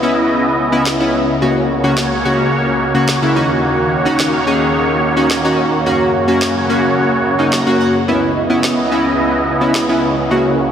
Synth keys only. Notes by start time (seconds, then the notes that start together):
0.03 B3 C#4 E4
0.72 B3 C#4 E4
1.00 B3 C#4 E4
1.41 C#3 A#3 C#4 F#4
1.83 C#3 A#3 C#4 F#4
2.25 C#3 A#3 C#4 F#4
2.94 C#3 A#3 C#4 F#4
3.22 C#3 A#3 C#4 E4
3.36 C#4 D#4 F#4
4.05 C#4 D#4 F#4
4.47 C#4 D#4 G#4
5.16 C#4 D#4 F#4
5.44 C#4 D#4 F#4
5.86 A#3 C#4 F#4
6.28 A#3 C#4 F#4
6.69 A#3 C#4 F#4
7.39 A#3 C#4 D#4
7.53 A#5
7.67 A#3 C#4 F#4
7.80 F#5
8.08 B3 C#4 E4
8.50 B3 C#4 E4
8.91 B3 C#4 E4
9.61 B3 C#4 E4
9.89 B3 C#4 E4
10.31 C#3 A#3 C#4 F#4